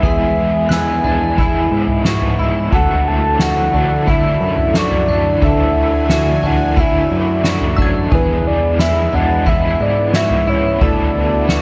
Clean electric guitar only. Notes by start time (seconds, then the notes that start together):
0.03 G#4
0.70 E4
1.04 D4
1.38 E4
2.05 F#4
2.39 E4
2.72 A4
3.40 F#4
3.73 D4
4.07 E4
4.75 F#4
5.08 D4
5.42 A4
6.10 F#4
6.43 D4
6.77 E4
7.44 F#4
7.78 D4
8.12 G#4
8.79 E4
9.13 D4
9.46 E4
10.14 F#4
10.47 E4
10.81 A4
11.49 F#4